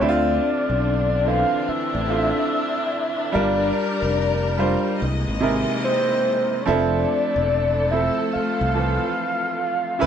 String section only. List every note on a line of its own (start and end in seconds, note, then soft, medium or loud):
0.00 3.29 D3 medium
0.00 3.29 C4 medium
0.00 4.95 D4 medium
3.33 4.98 G3 medium
3.33 4.98 A#4 medium
4.98 6.64 C3 medium
4.98 6.64 E3 medium
4.98 6.64 G#3 medium
4.98 6.64 A#3 medium
4.98 6.64 D#5 medium
6.65 9.96 A3 medium
6.65 9.96 A4 medium
9.99 10.06 C#3 medium
9.99 10.06 B3 medium